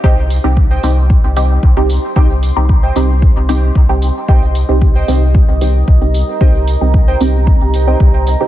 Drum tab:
HH |-o-o-o-o|-o-o-o-o|-o-o-o-o|-o-o-o-o|
BD |o-o-o-o-|o-o-o-o-|o-o-o-o-|o-o-o-o-|